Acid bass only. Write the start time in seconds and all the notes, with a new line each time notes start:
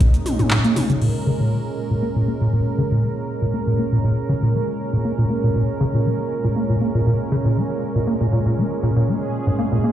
0.00 A#2
0.39 A#2
0.51 A#2
0.64 A#3
0.76 C#3
0.89 C#3
1.01 A#2
1.27 C#3
1.40 A#2
1.52 A#3
1.91 A#2
2.02 A#3
2.16 A#2
2.28 A#3
2.41 A#2
2.53 A#2
2.78 C#3
2.91 A#2
3.03 A#3
3.42 A#2
3.54 A#3
3.67 A#2
3.79 A#3
3.92 A#2
4.04 A#2
4.29 C#3
4.42 A#2
4.54 A#3
4.93 A#2
5.05 A#3
5.18 A#2
5.30 A#3
5.44 A#2
5.55 A#2
5.80 C#3
5.94 A#2
6.06 A#3
6.44 A#2
6.56 A#3
6.70 A#2
6.81 A#3
6.95 A#2
7.07 A#2
7.32 C#3
7.45 A#2
7.57 A#3
7.95 A#2
8.07 A#3
8.21 A#2
8.33 A#2
8.46 A#2
8.58 A#3
8.83 A#2
8.96 A#2
9.08 A#3
9.47 G#2
9.59 A#3
9.72 A#2
9.84 A#3